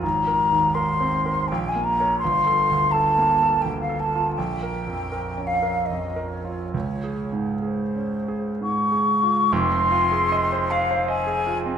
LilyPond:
<<
  \new Staff \with { instrumentName = "Flute" } { \time 3/4 \key bes \mixolydian \tempo 4 = 80 bes''4 c'''4 g''16 aes''16 bes''8 | c'''4 a''4 g''16 f''16 a''8 | g''4. f''8 ees''8 des''8 | des''8. r16 c''4 des'''4 |
c'''4. f''8 aes''4 | }
  \new Staff \with { instrumentName = "Grand piano" } { \time 3/4 \key bes \mixolydian \tuplet 3/2 { aes,,8 bes'8 ees,8 bes'8 c'8 bes'8 bes,,8 bes8 <bes' des''>8 } | \tuplet 3/2 { g,,8 a'8 d,8 a'8 bes8 a'8 d,8 a'8 f'8 } | \tuplet 3/2 { bes,,8 bes'8 f,8 bes'8 des'8 bes'8 f,8 bes'8 f'8 } | \tuplet 3/2 { des,8 aes'8 aes,8 aes'8 des'8 aes'8 aes,8 aes'8 f'8 } |
<f,, f,>16 c'16 f'16 aes'16 ees''16 c''16 f''16 c''16 ees''16 aes'16 f'16 c'16 | }
>>